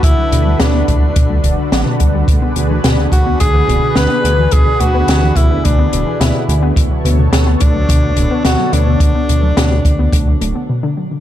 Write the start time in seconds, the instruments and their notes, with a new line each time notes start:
Already playing: analog synth pad D3 D4 F#4 A4 B4
0.03 detuned saw bass D2, synth arpeggio sound B2, tenor saxophone E4, kick, closed hi-hat
0.18 synth arpeggio sound F#3
0.32 detuned saw bass D2, synth arpeggio sound B2, closed hi-hat
0.46 synth arpeggio sound G3
0.60 detuned saw bass D2, synth arpeggio sound B2, tenor saxophone D4, snare, closed hi-hat
0.74 synth arpeggio sound B3
0.88 detuned saw bass D2, synth arpeggio sound B2, tenor saxophone D4, kick, closed hi-hat
1.02 synth arpeggio sound F#3
1.16 detuned saw bass D2, synth arpeggio sound B2, kick, closed hi-hat
1.30 synth arpeggio sound G3
1.44 detuned saw bass D1, synth arpeggio sound B2, kick, closed hi-hat
1.58 synth arpeggio sound D3
1.72 detuned saw bass A1, synth arpeggio sound F#3, snare, closed hi-hat
1.86 synth arpeggio sound B2
2.00 detuned saw bass D2, synth arpeggio sound G3, kick, closed hi-hat
2.14 synth arpeggio sound G3
2.28 detuned saw bass D2, synth arpeggio sound B2, analog synth pad G#4 B4, kick, closed hi-hat
2.42 synth arpeggio sound B3
2.56 detuned saw bass D2, synth arpeggio sound B2, closed hi-hat
2.70 synth arpeggio sound E3
2.84 detuned saw bass D2, synth arpeggio sound B2, snare, closed hi-hat
2.98 synth arpeggio sound B2
3.12 detuned saw bass D2, synth arpeggio sound B2, tenor saxophone F#4, kick, closed hi-hat
3.26 synth arpeggio sound B3
3.40 detuned saw bass D2, synth arpeggio sound B2, tenor saxophone G#4, kick, closed hi-hat
3.54 synth arpeggio sound E3
3.68 detuned saw bass D1, synth arpeggio sound B2, kick, closed hi-hat
3.82 synth arpeggio sound B2
3.96 detuned saw bass D2, synth arpeggio sound B2, tenor saxophone B4, snare, closed hi-hat
4.10 synth arpeggio sound B3
4.24 detuned saw bass D2, synth arpeggio sound B2, closed hi-hat
4.38 synth arpeggio sound E3
4.51 detuned saw bass D2, synth arpeggio sound B2, tenor saxophone G#4, kick, closed hi-hat
4.66 synth arpeggio sound B2
4.80 detuned saw bass D2, synth arpeggio sound B2, tenor saxophone F#4, closed hi-hat
4.94 synth arpeggio sound B3
5.08 detuned saw bass D2, synth arpeggio sound B2, snare, closed hi-hat
5.23 synth arpeggio sound E3
5.36 detuned saw bass D2, synth arpeggio sound B2, tenor saxophone E4, kick, closed hi-hat
5.51 synth arpeggio sound B2
5.65 detuned saw bass D2, synth arpeggio sound B2, tenor saxophone D4, kick, closed hi-hat
5.78 synth arpeggio sound B3
5.93 detuned saw bass D1, synth arpeggio sound B2, closed hi-hat
6.07 synth arpeggio sound E3
6.21 detuned saw bass D2, synth arpeggio sound B2, tenor saxophone E4, snare, closed hi-hat
6.35 synth arpeggio sound B2
6.49 detuned saw bass D2, synth arpeggio sound B2, closed hi-hat
6.63 synth arpeggio sound B3
6.76 detuned saw bass D2, synth arpeggio sound B2, analog synth pad B3 A4 C#5, kick, closed hi-hat
6.91 synth arpeggio sound F#3
7.05 detuned saw bass D2, synth arpeggio sound B2, closed hi-hat
7.19 synth arpeggio sound B2
7.33 detuned saw bass D2, synth arpeggio sound B2, snare, closed hi-hat
7.47 synth arpeggio sound B3
7.60 detuned saw bass D2, synth arpeggio sound B2, tenor saxophone D4, kick, closed hi-hat
7.75 synth arpeggio sound F#3
7.89 detuned saw bass D2, synth arpeggio sound B2, kick, closed hi-hat
8.03 synth arpeggio sound B2
8.16 detuned saw bass D1, synth arpeggio sound B2, kick, closed hi-hat
8.31 synth arpeggio sound B3
8.45 detuned saw bass D2, synth arpeggio sound B2, tenor saxophone F#4, snare, closed hi-hat
8.59 synth arpeggio sound F#3
8.73 detuned saw bass D2, synth arpeggio sound B2, tenor saxophone D4, closed hi-hat
8.87 synth arpeggio sound B2
9.00 detuned saw bass D2, synth arpeggio sound B2, kick, closed hi-hat
9.15 synth arpeggio sound B3
9.29 detuned saw bass D2, synth arpeggio sound B2, closed hi-hat
9.43 synth arpeggio sound F#3
9.57 detuned saw bass D2, synth arpeggio sound B2, snare, closed hi-hat
9.71 synth arpeggio sound B2
9.85 detuned saw bass D2, synth arpeggio sound B2, kick, closed hi-hat
9.99 synth arpeggio sound B3
10.12 detuned saw bass D2, synth arpeggio sound B2, kick, closed hi-hat
10.27 synth arpeggio sound F#3
10.41 detuned saw bass D1, synth arpeggio sound A3, closed hi-hat
10.55 synth arpeggio sound B3
10.69 synth arpeggio sound B2
10.83 synth arpeggio sound D3
10.97 synth arpeggio sound F#3
11.11 synth arpeggio sound D3